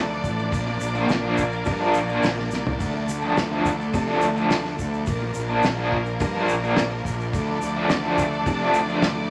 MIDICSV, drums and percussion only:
0, 0, Header, 1, 2, 480
1, 0, Start_track
1, 0, Key_signature, -1, "minor"
1, 0, Tempo, 567108
1, 439, Time_signature, 4, 2, 24, 8
1, 7872, End_track
2, 0, Start_track
2, 0, Title_t, "Drums"
2, 202, Note_on_c, 9, 36, 78
2, 206, Note_on_c, 9, 82, 82
2, 287, Note_off_c, 9, 36, 0
2, 290, Note_off_c, 9, 82, 0
2, 327, Note_on_c, 9, 82, 24
2, 412, Note_off_c, 9, 82, 0
2, 438, Note_on_c, 9, 46, 61
2, 443, Note_on_c, 9, 36, 109
2, 453, Note_on_c, 9, 82, 69
2, 523, Note_off_c, 9, 46, 0
2, 528, Note_off_c, 9, 36, 0
2, 538, Note_off_c, 9, 82, 0
2, 682, Note_on_c, 9, 82, 90
2, 767, Note_off_c, 9, 82, 0
2, 801, Note_on_c, 9, 82, 27
2, 886, Note_off_c, 9, 82, 0
2, 921, Note_on_c, 9, 82, 69
2, 930, Note_on_c, 9, 46, 53
2, 934, Note_on_c, 9, 38, 107
2, 1006, Note_off_c, 9, 82, 0
2, 1015, Note_off_c, 9, 46, 0
2, 1018, Note_off_c, 9, 38, 0
2, 1165, Note_on_c, 9, 82, 94
2, 1170, Note_on_c, 9, 36, 88
2, 1250, Note_off_c, 9, 82, 0
2, 1255, Note_off_c, 9, 36, 0
2, 1284, Note_on_c, 9, 82, 27
2, 1368, Note_off_c, 9, 82, 0
2, 1399, Note_on_c, 9, 82, 66
2, 1413, Note_on_c, 9, 36, 107
2, 1416, Note_on_c, 9, 46, 59
2, 1483, Note_off_c, 9, 82, 0
2, 1497, Note_off_c, 9, 36, 0
2, 1501, Note_off_c, 9, 46, 0
2, 1643, Note_on_c, 9, 82, 87
2, 1728, Note_off_c, 9, 82, 0
2, 1766, Note_on_c, 9, 82, 26
2, 1851, Note_off_c, 9, 82, 0
2, 1888, Note_on_c, 9, 82, 74
2, 1897, Note_on_c, 9, 46, 60
2, 1901, Note_on_c, 9, 38, 108
2, 1972, Note_off_c, 9, 82, 0
2, 1982, Note_off_c, 9, 46, 0
2, 1985, Note_off_c, 9, 38, 0
2, 2022, Note_on_c, 9, 38, 29
2, 2107, Note_off_c, 9, 38, 0
2, 2126, Note_on_c, 9, 82, 79
2, 2145, Note_on_c, 9, 38, 54
2, 2211, Note_off_c, 9, 82, 0
2, 2230, Note_off_c, 9, 38, 0
2, 2257, Note_on_c, 9, 43, 92
2, 2342, Note_off_c, 9, 43, 0
2, 2372, Note_on_c, 9, 82, 76
2, 2374, Note_on_c, 9, 36, 107
2, 2374, Note_on_c, 9, 46, 53
2, 2457, Note_off_c, 9, 82, 0
2, 2458, Note_off_c, 9, 46, 0
2, 2459, Note_off_c, 9, 36, 0
2, 2613, Note_on_c, 9, 82, 105
2, 2698, Note_off_c, 9, 82, 0
2, 2853, Note_on_c, 9, 46, 52
2, 2856, Note_on_c, 9, 82, 70
2, 2857, Note_on_c, 9, 38, 96
2, 2938, Note_off_c, 9, 46, 0
2, 2941, Note_off_c, 9, 38, 0
2, 2941, Note_off_c, 9, 82, 0
2, 3094, Note_on_c, 9, 36, 87
2, 3096, Note_on_c, 9, 82, 92
2, 3179, Note_off_c, 9, 36, 0
2, 3181, Note_off_c, 9, 82, 0
2, 3224, Note_on_c, 9, 82, 27
2, 3308, Note_off_c, 9, 82, 0
2, 3333, Note_on_c, 9, 82, 70
2, 3334, Note_on_c, 9, 36, 109
2, 3335, Note_on_c, 9, 46, 57
2, 3418, Note_off_c, 9, 36, 0
2, 3418, Note_off_c, 9, 82, 0
2, 3420, Note_off_c, 9, 46, 0
2, 3568, Note_on_c, 9, 82, 82
2, 3652, Note_off_c, 9, 82, 0
2, 3697, Note_on_c, 9, 82, 27
2, 3781, Note_off_c, 9, 82, 0
2, 3812, Note_on_c, 9, 46, 54
2, 3815, Note_on_c, 9, 38, 112
2, 3815, Note_on_c, 9, 82, 69
2, 3897, Note_off_c, 9, 46, 0
2, 3900, Note_off_c, 9, 38, 0
2, 3900, Note_off_c, 9, 82, 0
2, 3934, Note_on_c, 9, 38, 30
2, 4019, Note_off_c, 9, 38, 0
2, 4053, Note_on_c, 9, 36, 78
2, 4054, Note_on_c, 9, 82, 83
2, 4138, Note_off_c, 9, 36, 0
2, 4138, Note_off_c, 9, 82, 0
2, 4177, Note_on_c, 9, 82, 28
2, 4262, Note_off_c, 9, 82, 0
2, 4287, Note_on_c, 9, 82, 76
2, 4294, Note_on_c, 9, 36, 103
2, 4294, Note_on_c, 9, 46, 59
2, 4372, Note_off_c, 9, 82, 0
2, 4378, Note_off_c, 9, 36, 0
2, 4379, Note_off_c, 9, 46, 0
2, 4524, Note_on_c, 9, 82, 98
2, 4609, Note_off_c, 9, 82, 0
2, 4762, Note_on_c, 9, 82, 69
2, 4775, Note_on_c, 9, 46, 54
2, 4779, Note_on_c, 9, 38, 106
2, 4847, Note_off_c, 9, 82, 0
2, 4860, Note_off_c, 9, 46, 0
2, 4863, Note_off_c, 9, 38, 0
2, 5013, Note_on_c, 9, 36, 89
2, 5097, Note_off_c, 9, 36, 0
2, 5126, Note_on_c, 9, 82, 29
2, 5210, Note_off_c, 9, 82, 0
2, 5249, Note_on_c, 9, 46, 61
2, 5251, Note_on_c, 9, 82, 70
2, 5252, Note_on_c, 9, 36, 115
2, 5334, Note_off_c, 9, 46, 0
2, 5335, Note_off_c, 9, 82, 0
2, 5336, Note_off_c, 9, 36, 0
2, 5490, Note_on_c, 9, 82, 90
2, 5574, Note_off_c, 9, 82, 0
2, 5617, Note_on_c, 9, 82, 26
2, 5702, Note_off_c, 9, 82, 0
2, 5723, Note_on_c, 9, 46, 60
2, 5727, Note_on_c, 9, 38, 110
2, 5741, Note_on_c, 9, 82, 67
2, 5808, Note_off_c, 9, 46, 0
2, 5811, Note_off_c, 9, 38, 0
2, 5825, Note_off_c, 9, 82, 0
2, 5968, Note_on_c, 9, 36, 79
2, 5979, Note_on_c, 9, 82, 86
2, 6052, Note_off_c, 9, 36, 0
2, 6063, Note_off_c, 9, 82, 0
2, 6097, Note_on_c, 9, 82, 26
2, 6182, Note_off_c, 9, 82, 0
2, 6207, Note_on_c, 9, 36, 111
2, 6207, Note_on_c, 9, 46, 56
2, 6213, Note_on_c, 9, 82, 75
2, 6291, Note_off_c, 9, 46, 0
2, 6292, Note_off_c, 9, 36, 0
2, 6297, Note_off_c, 9, 82, 0
2, 6447, Note_on_c, 9, 82, 96
2, 6532, Note_off_c, 9, 82, 0
2, 6682, Note_on_c, 9, 46, 55
2, 6685, Note_on_c, 9, 38, 103
2, 6685, Note_on_c, 9, 82, 69
2, 6766, Note_off_c, 9, 46, 0
2, 6770, Note_off_c, 9, 38, 0
2, 6770, Note_off_c, 9, 82, 0
2, 6923, Note_on_c, 9, 36, 92
2, 6926, Note_on_c, 9, 82, 100
2, 7007, Note_off_c, 9, 36, 0
2, 7010, Note_off_c, 9, 82, 0
2, 7049, Note_on_c, 9, 82, 27
2, 7133, Note_off_c, 9, 82, 0
2, 7161, Note_on_c, 9, 36, 117
2, 7161, Note_on_c, 9, 46, 55
2, 7162, Note_on_c, 9, 82, 67
2, 7246, Note_off_c, 9, 36, 0
2, 7246, Note_off_c, 9, 46, 0
2, 7247, Note_off_c, 9, 82, 0
2, 7397, Note_on_c, 9, 82, 93
2, 7481, Note_off_c, 9, 82, 0
2, 7523, Note_on_c, 9, 82, 27
2, 7607, Note_off_c, 9, 82, 0
2, 7635, Note_on_c, 9, 46, 57
2, 7638, Note_on_c, 9, 38, 120
2, 7644, Note_on_c, 9, 82, 76
2, 7719, Note_off_c, 9, 46, 0
2, 7723, Note_off_c, 9, 38, 0
2, 7729, Note_off_c, 9, 82, 0
2, 7872, End_track
0, 0, End_of_file